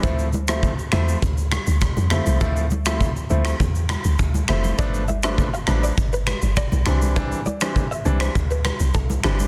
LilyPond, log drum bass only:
\new Staff \with { instrumentName = "Log drum bass" } { \clef bass \time 4/4 \key d \dorian \tempo 4 = 101 d,4. e,8 d,8. d,8 f,8 c,16 | d,4. d,8 e,8. d,16 d,8 f,,8 | g,,4. a,,8 g,,8. g,,8 b,,16 c,8~ | c,8 r4 c,8 d,8. c,16 c,8 g,,8 | }